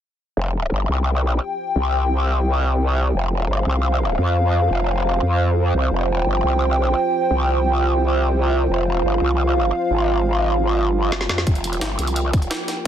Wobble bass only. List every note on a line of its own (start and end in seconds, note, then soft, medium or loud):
0.37 0.70 F1 loud
0.72 0.88 G1 loud
0.89 1.40 C2 medium
1.76 3.13 C2 loud
3.14 3.48 F1 loud
3.49 3.65 G1 medium
3.66 4.17 C2 medium
4.18 4.69 F2 loud
4.70 5.21 F1 medium
5.23 5.73 F2 medium
5.75 5.90 C2 medium
5.92 6.25 F1 medium
6.27 6.43 G1 medium
6.44 6.95 C2 loud
7.31 8.68 C2 medium
8.69 9.03 F1 medium
9.04 9.20 G1 loud
9.21 9.72 C2 medium
9.91 10.88 G#1 loud
10.88 11.15 G1 loud
11.15 11.28 F#1 loud
11.29 11.45 F2 loud
11.47 11.80 F1 loud
11.81 11.97 G1 medium
11.99 12.49 C2 medium